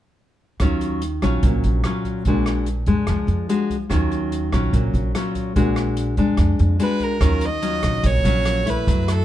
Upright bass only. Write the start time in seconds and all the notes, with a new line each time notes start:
0.60 D#2
1.22 A#1
1.43 A#1
1.64 A#1
2.26 A#1
2.87 F2
3.08 F2
3.27 F2
3.91 D#2
4.53 A#1
4.73 A#1
4.94 A#1
5.56 A#1
6.17 F2
6.38 F2
6.60 F2
7.21 D#2
7.83 A#1
8.04 A#1
8.24 A#1
8.87 F#2